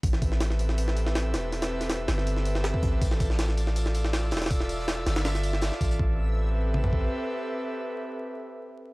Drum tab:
HH |o---o---o---o---o---o---o---o---|o-o---o-o---o---o---o---o---o---|o---o---o---o---o---o---o---oooo|o---o---o---o-o-o-x-o---o---o-x-|
TB |--------------------------------|--------------------------------|x---x---x---x---x---x---x---x---|x---x---x---x---x---x---x---x---|
SD |--o---o-o-o---o---o---o-o---o---|o-o---o-o---o-o---o---o-o-------|--o---o-o-o---o---o---o-o---oooo|--o---o-o---o-o-o-o---o-o-o-----|
T2 |--------------------------------|--------------------------------|--------------------------------|--------------------------------|
FT |--------------------------------|--------------------------------|--------------------------------|--------------------------------|
BD |o---o---------------------------|--------------------------o-o---|o---o---------------------------|o---------------------------o---|

HH |--------------------------------|--------------------------------|
TB |--------------------------------|--------------------------------|
SD |--------------------------------|--------------------------------|
T2 |----------------o---------------|--------------------------------|
FT |------------------o-------------|--------------------------------|
BD |o-------------------o-----------|--------------------------------|